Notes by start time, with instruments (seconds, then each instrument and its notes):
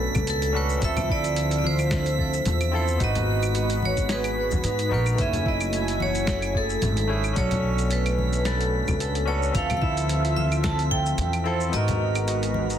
Already playing: analog synth pad B2 A3 B3, tine electric piano C#4 D4 F#4 A4, harp A4 B4, vibraphone A4, synth texture B6
0.15 upright bass C#2, kick, low conga, claves, shaker
0.27 harp A4, vibraphone A4, closed hi-hat, shaker
0.42 closed hi-hat, shaker
0.53 tine electric piano C#4 D4 F#4 A4, harp B4
0.57 vibraphone B4
0.70 shaker
0.78 analog synth pad D3 C4 F4 E5, tine electric piano C4 E5, closed hi-hat, shaker
0.82 upright bass D2, tine electric piano F3 A4, vibraphone E5, kick
0.97 closed hi-hat, low conga, claves, shaker
1.09 harp E4, vibraphone D5, kick
1.24 closed hi-hat, shaker
1.36 closed hi-hat, shaker
1.51 closed hi-hat, shaker
1.58 vibraphone D5
1.64 harp F4, vibraphone C5, high conga
1.79 closed hi-hat, claves, shaker
1.91 kick, snare, closed hi-hat, shaker
2.06 closed hi-hat, shaker
2.19 harp A4, kick
2.33 shaker
2.45 upright bass E2, closed hi-hat, low conga, shaker
2.61 closed hi-hat, claves, shaker
2.71 tine electric piano C4 E4 F4 A4, harp A4
2.76 vibraphone C5
2.88 shaker
2.97 upright bass G#1, analog synth pad G#3 B3 F#4 B4, tine electric piano B3 D#4, harp F#4, kick, closed hi-hat, shaker
3.01 tine electric piano F#4 B4, vibraphone D#5
3.15 closed hi-hat, low conga, shaker
3.43 closed hi-hat, claves, shaker
3.55 harp F#4, closed hi-hat, shaker
3.70 closed hi-hat, shaker
3.82 vibraphone C#5, high conga
3.97 kick, closed hi-hat, shaker
4.09 harp G#4, vibraphone B4, snare, closed hi-hat, shaker
4.24 closed hi-hat, claves, shaker
4.52 kick, high conga, low conga, shaker
4.64 upright bass G#2, harp D#4, closed hi-hat, shaker
4.79 closed hi-hat, shaker
4.89 upright bass A#1, tine electric piano B3 D#4 F#4 A#4, harp F#4
4.94 vibraphone B4
5.06 claves, shaker
5.15 analog synth pad F#3 A3 G#5, tine electric piano A3 C#4, kick, closed hi-hat, shaker
5.19 upright bass F#1, analog synth pad E4, tine electric piano E4 G#5, vibraphone E5
5.33 closed hi-hat, low conga, shaker
5.46 harp E4, vibraphone D#5, kick
5.61 closed hi-hat, claves, shaker
5.73 closed hi-hat, shaker
5.88 closed hi-hat, shaker
6.00 harp F#4, vibraphone C#5, high conga
6.15 closed hi-hat, shaker
6.27 kick, snare, closed hi-hat, shaker
6.42 closed hi-hat, claves, shaker
6.54 harp G#4, vibraphone A4, kick
6.70 shaker
6.82 upright bass G#1, closed hi-hat, low conga, shaker
6.97 closed hi-hat, shaker
7.07 tine electric piano A3 C#4 E4 G#4, harp G#4
7.24 claves, shaker
7.33 upright bass B1, analog synth pad A3 B3, tine electric piano C#4 D4, harp A4, kick, closed hi-hat, shaker
7.38 tine electric piano F#4 A4, vibraphone C#5
7.51 closed hi-hat, low conga, shaker
7.79 closed hi-hat, shaker
7.91 harp A4, vibraphone B4, closed hi-hat, shaker
8.06 closed hi-hat, claves, shaker
8.19 high conga
8.33 closed hi-hat, shaker
8.45 vibraphone A4, harp B4, snare, closed hi-hat, shaker
8.61 closed hi-hat, shaker
8.88 upright bass C#2, kick, low conga, claves, shaker
9.00 harp A4, closed hi-hat, shaker
9.15 closed hi-hat, shaker
9.25 tine electric piano C#4 D4 F#4 A4, harp B4, vibraphone C#5
9.43 shaker
9.51 upright bass D2, tine electric piano C4 E5, vibraphone F5, kick, closed hi-hat, shaker
9.55 tine electric piano F3 A4, analog synth pad C4 F4 E5
9.70 closed hi-hat, low conga, claves, shaker
9.77 vibraphone F5
9.82 harp E4, vibraphone E5, kick
9.97 closed hi-hat, shaker
10.09 closed hi-hat, shaker
10.25 closed hi-hat, shaker
10.36 harp F4, vibraphone E5, high conga
10.52 closed hi-hat, claves, shaker
10.64 vibraphone A5, kick, snare, closed hi-hat, shaker
10.79 closed hi-hat, shaker
10.91 harp A4, vibraphone G5, kick
11.06 shaker
11.18 upright bass E2, closed hi-hat, low conga, shaker
11.33 closed hi-hat, claves, shaker
11.44 tine electric piano C4 E4 F4 A4, harp A4, vibraphone C5
11.61 shaker
11.69 upright bass G#1, analog synth pad G#3 B3 F#4 A#4, tine electric piano B3 D#4, harp F#4, closed hi-hat, shaker
11.74 tine electric piano F#4 A#4, vibraphone D#5
11.88 closed hi-hat, low conga, shaker
12.15 closed hi-hat, claves, shaker
12.28 harp F#4, closed hi-hat, shaker
12.43 closed hi-hat, shaker
12.54 high conga
12.70 closed hi-hat, shaker